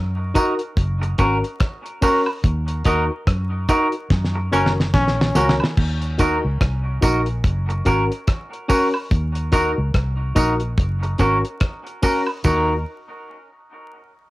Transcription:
Already playing: fingered electric bass F#2
0.35 reed electric piano D#4 F#4 A#4, clean electric guitar D#4 F#4 A#4, kick, closed hi-hat, tambourine
0.59 closed hi-hat
0.77 fingered electric bass F#1, kick, closed hi-hat
1.02 muted clean electric guitar stroke, closed hi-hat
1.18 fingered electric bass G#1, reed electric piano C#4 F#4 A#4, clean electric guitar C#4 F#4 A#4, kick, closed hi-hat, tambourine
1.44 closed hi-hat
1.60 kick, cross-stick, closed hi-hat
1.86 closed hi-hat
2.02 reed electric piano C#4 F#4 A#4, clean electric guitar C#4 F#4 A#4, kick, open hi-hat, tambourine
2.26 high woodblock
2.44 fingered electric bass D#2, kick, closed hi-hat
2.68 closed hi-hat
2.85 fingered electric bass D#2, reed electric piano D#4 F#4 A#4, clean electric guitar D#4 F#4 A#4, kick, closed hi-hat, tambourine
3.27 fingered electric bass F#2, kick, cross-stick, closed hi-hat
3.69 reed electric piano D#4 F#4 A#4, clean electric guitar D#4 F#4 A#4, kick, closed hi-hat, tambourine
3.92 closed hi-hat
4.10 fingered electric bass F#2, kick, snare
4.24 snare
4.36 muted clean electric guitar stroke
4.52 fingered electric bass F#1, reed electric piano C#4 F#4 A#4, trombone C#4, clean electric guitar C#4 F#4 A#4, tambourine
4.66 snare
4.80 snare
4.94 fingered electric bass A#1, trombone C#4, kick, snare
5.08 snare
5.21 snare
5.35 fingered electric bass C#2, reed electric piano C#4 F#4 A#4, clean electric guitar C#4 F#4 A#4, snare, tambourine
5.49 snare
5.60 snare, high woodblock
5.77 fingered electric bass D#2, kick, crash
6.02 closed hi-hat
6.18 reed electric piano D#4 F#4 A#4, clean electric guitar D#4 F#4 A#4, kick, closed hi-hat, tambourine
6.44 fingered electric bass C#2
6.61 fingered electric bass C2, kick, cross-stick, closed hi-hat
7.01 fingered electric bass A#1, reed electric piano D#4 F#4 A#4, clean electric guitar D#4 F#4 A#4, kick, closed hi-hat, tambourine
7.26 closed hi-hat
7.44 fingered electric bass F#1, kick, closed hi-hat
7.69 muted clean electric guitar stroke, closed hi-hat
7.85 fingered electric bass G#1, reed electric piano C#4 F#4 A#4, clean electric guitar C#4 F#4 A#4, kick, closed hi-hat, tambourine
8.12 closed hi-hat
8.27 kick, cross-stick, closed hi-hat
8.53 closed hi-hat
8.68 reed electric piano C#4 F#4 A#4, clean electric guitar C#4 F#4 A#4, kick, open hi-hat, tambourine
8.94 high woodblock
9.11 fingered electric bass D#2, kick, closed hi-hat
9.35 closed hi-hat
9.52 reed electric piano D#4 F#4 A#4, clean electric guitar D#4 F#4 A#4, kick, closed hi-hat, tambourine
9.78 fingered electric bass C#2
9.94 fingered electric bass C2, kick, cross-stick, closed hi-hat
10.35 fingered electric bass A#1, reed electric piano D#4 F#4 A#4, clean electric guitar D#4 F#4 A#4, kick, closed hi-hat, tambourine
10.60 closed hi-hat
10.78 fingered electric bass F#1, kick, closed hi-hat
11.03 muted clean electric guitar stroke, closed hi-hat
11.18 fingered electric bass G#1, reed electric piano C#4 F#4 A#4, clean electric guitar C#4 F#4 A#4, kick, closed hi-hat, tambourine
11.45 closed hi-hat
11.60 kick, cross-stick, closed hi-hat
11.87 closed hi-hat
12.02 reed electric piano C#4 F#4 A#4, clean electric guitar C#4 F#4 A#4, kick, open hi-hat, tambourine
12.27 high woodblock
12.44 fingered electric bass D#2, reed electric piano D#4 F#4 A#4, clean electric guitar D#4 F#4 A#4, kick, floor tom, china, tambourine

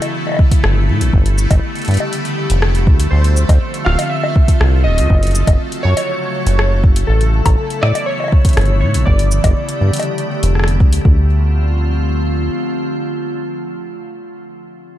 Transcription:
Already playing: ambient pad C#3 E3 A3 B3 E4, synth texture A3 A4
0.02 closed hi-hat, high bongo
0.27 high bongo
0.29 high bongo
0.32 high bongo
0.34 high bongo
0.37 kick, high bongo
0.51 kick, closed hi-hat
0.64 acid bass G1, cross-stick
0.89 acid bass A2
1.01 acid bass A1, closed hi-hat
1.13 acid bass G1, ambient pad D3 G3 A3 B3 G4, kick
1.26 closed hi-hat
1.38 cabasa
1.51 acid bass G1, kick, closed hi-hat, high bongo
1.75 closed hi-hat
1.79 closed hi-hat
1.82 closed hi-hat
1.85 closed hi-hat
1.88 acid bass G2, closed hi-hat
1.91 closed hi-hat
1.94 closed hi-hat
1.97 closed hi-hat, high bongo
2.13 closed hi-hat
2.25 closed hi-hat
2.50 acid bass F1, closed hi-hat
2.62 cross-stick
2.75 closed hi-hat
2.87 acid bass D2, kick
3.00 closed hi-hat
3.11 acid bass D2, ambient pad F3 C4 F4, synth keys C5
3.24 closed hi-hat
3.37 cabasa
3.49 acid bass D2, kick, closed hi-hat, high bongo
3.74 closed hi-hat
3.85 acid bass D1, synth keys F5, cross-stick
3.99 closed hi-hat, high bongo
4.09 synth keys E5
4.24 high bongo
4.36 kick
4.48 kick, closed hi-hat
4.61 acid bass C2, cross-stick
4.84 acid bass D1, synth keys D#5
4.98 acid bass D2, closed hi-hat
5.10 acid bass F#1, ambient pad C#3 F#3 A3 F#4, kick
5.23 closed hi-hat
5.27 closed hi-hat
5.31 closed hi-hat
5.35 cabasa
5.47 acid bass F#1, kick, closed hi-hat, high bongo
5.72 closed hi-hat
5.83 acid bass F#2, synth keys C#5
5.97 closed hi-hat, high bongo
6.46 acid bass F#1, closed hi-hat
6.59 cross-stick
6.84 kick
6.96 closed hi-hat
7.07 acid bass A1, ambient pad E3 B3 E4, synth keys A4
7.21 closed hi-hat
7.46 acid bass A1, kick, closed hi-hat, high bongo
7.70 closed hi-hat
7.81 acid bass A2, synth keys D5, cross-stick
7.95 closed hi-hat, high bongo
8.06 synth keys C#5
8.20 high bongo
8.24 high bongo
8.28 high bongo
8.32 kick
8.45 kick, closed hi-hat
8.49 closed hi-hat
8.53 closed hi-hat
8.57 acid bass G1, cross-stick, closed hi-hat
8.61 closed hi-hat
8.65 closed hi-hat
8.81 acid bass A2, synth keys C#5
8.94 acid bass A1, closed hi-hat
9.05 acid bass G1, ambient pad D3 G3 A3 G4, synth keys D5, kick
9.19 closed hi-hat
9.31 cabasa
9.44 acid bass G1, kick, closed hi-hat, high bongo
9.69 closed hi-hat
9.81 acid bass G2
9.93 closed hi-hat
9.97 closed hi-hat, high bongo
10.18 closed hi-hat
10.43 acid bass F1, closed hi-hat
10.55 cross-stick
10.59 cross-stick
10.64 cross-stick
10.68 closed hi-hat
10.80 acid bass D2, kick
10.93 closed hi-hat
11.05 acid bass D2, ambient pad D3 F3 A3 C4 F4, kick

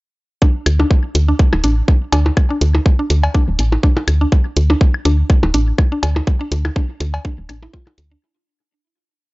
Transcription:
0.42 synth arpeggio sound D4, kick
0.66 fm bass D2, closed hi-hat, high woodblock
0.80 synth arpeggio sound D4, percussion blips
0.91 kick
1.15 fm bass D2, closed hi-hat
1.28 synth arpeggio sound D4
1.39 kick
1.53 fm bass D1, percussion blips, high woodblock
1.64 fm bass A1, synth arpeggio sound D4, closed hi-hat
1.88 kick
2.12 fm bass D2, synth arpeggio sound D4, closed hi-hat, cowbell
2.26 percussion blips
2.37 kick, high woodblock
2.50 synth arpeggio sound D4
2.61 fm bass D2, closed hi-hat
2.75 percussion blips
2.86 kick
2.99 synth arpeggio sound D4
3.10 fm bass D2, closed hi-hat
3.23 cowbell, high woodblock
3.35 synth arpeggio sound D4, kick
3.48 fm bass D1
3.59 fm bass A1, closed hi-hat
3.72 percussion blips
3.83 synth arpeggio sound D4, kick
3.97 percussion blips
4.08 fm bass D2, closed hi-hat, high woodblock
4.21 synth arpeggio sound D4
4.32 kick
4.57 fm bass D2, closed hi-hat
4.70 synth arpeggio sound D4, percussion blips
4.81 kick
4.94 high woodblock
5.05 fm bass D2, synth arpeggio sound D4, closed hi-hat
5.30 kick
5.43 fm bass D1, percussion blips
5.54 fm bass A1, synth arpeggio sound D4, closed hi-hat
5.78 kick, high woodblock
5.92 synth arpeggio sound D4
6.03 fm bass D2, closed hi-hat, cowbell
6.16 percussion blips
6.27 kick
6.41 synth arpeggio sound D4
6.52 fm bass D2, closed hi-hat
6.65 percussion blips, high woodblock
6.76 synth arpeggio sound D4, kick
7.00 fm bass D2, closed hi-hat
7.14 cowbell
7.25 synth arpeggio sound D4, kick
7.38 fm bass D1
7.49 fm bass A1, synth arpeggio sound D4, closed hi-hat, high woodblock
7.63 synth arpeggio sound E4, percussion blips
7.73 synth arpeggio sound F4, kick
7.87 percussion blips
7.98 fm bass D2, closed hi-hat
8.11 synth arpeggio sound D4

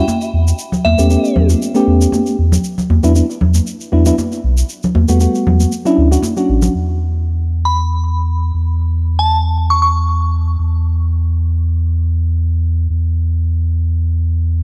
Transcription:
0.08 high conga, shaker
0.21 shaker
0.33 sub bass E2
0.48 shaker
0.59 shaker
0.72 low conga, shaker
0.85 sub bass E2, synth bell E5, high conga
0.98 sub bass E2, fm electric piano A3 B3 C#4 G4, shaker
1.10 fm electric piano A3 B3 C#4 G4, shaker
1.25 shaker
1.36 sub bass E2, low conga
1.49 high conga, shaker
1.62 shaker
1.75 fm electric piano A3 B3 C#4 G4, shaker
1.87 sub bass E2
2.01 shaker
2.12 high conga, shaker
2.26 shaker
2.39 sub bass E2
2.52 low conga, shaker
2.64 shaker
2.78 low conga, shaker
2.90 sub bass E2, high conga
3.03 sub bass E2, fm electric piano F#3 B3 D4 E4, shaker
3.15 fm electric piano F#3 B3 D4 E4, shaker
3.30 shaker
3.41 sub bass E2, low conga
3.54 high conga, shaker
3.67 shaker
3.80 shaker
3.92 sub bass E2, fm electric piano F#3 B3 D4 E4
4.06 fm electric piano F#3 B3 D4 E4, shaker
4.18 high conga, shaker
4.32 shaker
4.44 sub bass B1
4.57 shaker
4.69 shaker
4.83 low conga, shaker
4.95 sub bass E2, high conga
5.08 sub bass E2, fm electric piano G3 A3 B3 F#4, shaker
5.20 fm electric piano G3 A3 B3 F#4, shaker
5.35 shaker
5.46 sub bass E2, low conga
5.60 high conga, shaker
5.72 shaker
5.85 fm electric piano F#3 C#4 D4 E4, shaker
5.98 sub bass D2
6.11 fm electric piano F#3 C#4 D4 F#4, shaker
6.22 high conga, shaker
6.37 fm electric piano F#3 C#4 D4 F#4, shaker
6.49 sub bass A1
6.62 low conga, shaker
6.74 sub bass E2
7.65 synth bell B5
8.54 sub bass E2
9.19 synth bell A5
9.70 synth bell C#6
9.82 synth bell C#6
10.59 sub bass E2
12.90 sub bass E2

